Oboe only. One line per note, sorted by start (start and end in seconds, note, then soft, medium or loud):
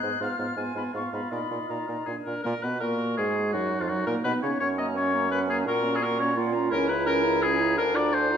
0.03 0.20 G#4 soft
0.20 0.37 F4 medium
0.38 0.56 F4 soft
0.56 0.75 F4 medium
0.75 0.93 F4 soft
0.94 1.12 F4 soft
1.13 1.30 F4 soft
1.31 1.49 F4 soft
1.50 1.68 F4 soft
1.69 1.87 F4 soft
1.87 2.05 F4 soft
2.06 2.15 G#4 medium
2.25 2.43 A#4 medium
2.43 2.64 A#4 medium
2.62 2.80 B4 medium
2.80 3.16 A#4 medium
3.17 3.52 G#4 medium
3.53 3.82 F#4 medium
3.80 3.90 F4 medium
3.88 4.06 F#4 medium
4.07 4.15 A#4 medium
4.24 4.33 B4 loud
4.42 4.60 C#5 medium
4.60 4.68 C#5 loud
4.78 4.86 D#5 medium
4.97 5.31 C#5 loud
5.31 5.39 B4 loud
5.50 5.58 G#4 medium
5.68 5.97 A#4 medium
5.95 6.04 G#4 medium
6.03 6.19 A#4 loud
6.20 6.37 C#5 medium
6.71 6.88 A#4 loud
6.89 7.06 B4 loud
7.06 7.44 A#4 loud
7.42 7.77 G#4 loud
7.78 7.97 A#4 loud
7.96 8.15 D5 loud
8.14 8.37 C5 loud